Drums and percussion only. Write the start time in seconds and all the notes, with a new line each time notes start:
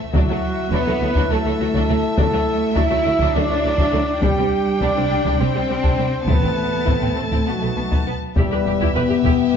0.14 taiko
0.71 taiko
1.15 taiko
1.74 taiko
2.18 taiko
2.76 taiko
3.19 taiko
3.78 taiko
4.22 taiko
4.81 taiko
5.25 taiko
5.84 taiko
6.28 taiko
6.87 taiko
7.32 taiko
7.92 taiko
8.36 taiko
8.80 taiko
9.25 taiko